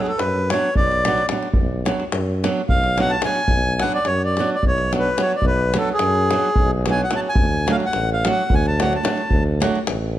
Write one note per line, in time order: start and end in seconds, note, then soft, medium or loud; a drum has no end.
0.00 0.10 F#3 medium
0.00 0.11 B3 medium
0.00 0.11 D4 medium
0.00 0.11 F#4 medium
0.00 0.07 G#4 medium
0.06 0.20 A4 medium
0.06 davul high soft
0.18 0.54 F#2 medium
0.18 0.51 B4 medium
0.18 davul high medium
0.50 0.68 F#3 medium
0.50 0.68 B3 medium
0.50 0.69 D4 medium
0.50 0.69 F#4 medium
0.50 0.74 C#5 medium
0.50 davul high medium
0.76 1.24 B1 medium
0.76 1.26 D5 medium
0.76 davul low medium
0.91 davul high soft
1.05 1.22 F#3 medium
1.05 1.22 B3 medium
1.05 1.22 D4 soft
1.05 1.23 F#4 medium
1.05 davul high medium
1.18 davul high soft
1.29 1.47 F#3 soft
1.29 1.47 B3 soft
1.29 1.47 D4 soft
1.29 davul high medium
1.33 1.48 F#4 medium
1.43 davul high soft
1.54 1.89 B1 medium
1.54 davul low medium
1.85 2.03 F#3 medium
1.85 2.03 B3 medium
1.85 2.03 D4 medium
1.85 2.04 F#4 medium
1.85 davul high medium
2.00 davul high soft
2.12 2.47 F#2 medium
2.12 davul high medium
2.44 2.60 F#3 medium
2.44 2.60 B3 medium
2.44 2.61 D4 medium
2.44 2.61 F#4 medium
2.44 davul high medium
2.69 3.17 B1 medium
2.69 2.99 F5 medium
2.69 davul low medium
2.84 davul high soft
2.97 3.14 F#3 medium
2.97 3.15 B3 medium
2.97 3.15 D4 medium
2.97 3.15 F#4 medium
2.97 3.11 F#5 medium
2.97 davul high medium
3.10 3.22 A5 medium
3.10 davul high soft
3.22 3.40 F#3 medium
3.22 3.40 B3 medium
3.22 3.40 D4 soft
3.22 3.82 G#5 loud
3.22 davul high medium
3.27 3.41 F#4 medium
3.35 davul high soft
3.48 3.83 B1 medium
3.48 davul low medium
3.80 3.97 F#3 medium
3.80 3.98 B3 medium
3.80 3.98 D4 medium
3.80 3.98 F#4 medium
3.80 3.93 F#5 medium
3.80 davul high medium
3.92 4.07 D5 medium
3.92 davul high soft
4.05 4.41 F#2 medium
4.05 4.22 C#5 medium
4.05 davul high medium
4.24 4.50 D5 medium
4.37 4.55 F#3 medium
4.37 4.55 B3 medium
4.37 4.55 D4 medium
4.37 4.55 F#4 medium
4.37 davul high medium
4.55 4.65 D5 medium
4.63 5.12 B1 medium
4.63 davul low medium
4.68 4.93 C#5 medium
4.78 davul high soft
4.93 5.09 F#3 medium
4.93 5.09 B3 medium
4.93 5.09 D4 medium
4.93 5.09 F#4 medium
4.93 davul high medium
4.99 5.21 B4 medium
5.06 davul high soft
5.17 5.33 F#3 medium
5.17 5.34 B3 soft
5.17 5.34 D4 medium
5.17 5.35 F#4 medium
5.17 davul high medium
5.22 5.32 C#5 medium
5.30 davul high soft
5.36 5.46 D5 medium
5.42 5.77 B1 loud
5.42 davul low medium
5.47 5.77 B4 medium
5.74 5.91 F#3 medium
5.74 5.91 B3 medium
5.74 5.91 D4 medium
5.74 5.92 F#4 medium
5.74 davul high medium
5.78 5.89 A4 medium
5.87 davul high soft
5.94 6.71 G#4 medium
5.99 6.35 F#2 medium
5.99 davul high medium
6.15 davul high soft
6.31 6.48 F#3 medium
6.31 6.48 B3 medium
6.31 6.49 D4 medium
6.31 6.49 F#4 medium
6.31 davul high medium
6.44 davul high soft
6.56 7.05 B1 loud
6.56 davul low medium
6.86 7.03 F#3 medium
6.86 7.03 B3 soft
6.86 7.04 D4 medium
6.86 7.04 F#4 medium
6.86 davul high medium
6.91 7.01 G#5 medium
6.98 davul high soft
7.04 7.13 F#5 medium
7.11 7.27 F#3 soft
7.11 7.27 B3 soft
7.11 7.27 D4 medium
7.11 7.28 F#4 medium
7.11 davul high medium
7.16 7.20 A5 medium
7.29 7.72 G#5 medium
7.36 7.71 D2 medium
7.36 davul low loud
7.67 7.84 F#3 medium
7.67 7.84 A3 medium
7.67 7.84 D4 medium
7.67 7.84 F#4 medium
7.67 davul high medium
7.71 7.76 F5 medium
7.80 davul high soft
7.85 8.10 F#5 medium
7.93 8.29 A1 medium
7.93 davul high medium
8.13 8.27 F5 medium
8.24 8.41 F#3 medium
8.24 8.42 A3 medium
8.24 8.42 D4 medium
8.24 8.42 F#4 medium
8.24 davul high medium
8.31 8.54 F#5 medium
8.50 8.98 D2 loud
8.50 davul low medium
8.54 8.66 G#5 medium
8.66 8.81 A5 medium
8.66 davul high soft
8.80 8.96 F#3 medium
8.80 8.96 A3 medium
8.80 8.97 D4 medium
8.80 8.97 F#4 medium
8.80 8.93 F#5 medium
8.80 davul high medium
8.93 9.43 A5 medium
8.93 davul high soft
9.03 9.20 F#3 medium
9.03 9.21 A3 soft
9.03 9.21 D4 soft
9.03 9.21 F#4 medium
9.03 davul high medium
9.18 davul high soft
9.30 9.65 D2 loud
9.30 davul low medium
9.60 9.77 F#3 medium
9.60 9.78 A3 medium
9.60 9.78 D4 medium
9.60 9.78 F#4 medium
9.60 davul high medium
9.75 davul high soft
9.87 10.19 A1 medium
9.87 davul high medium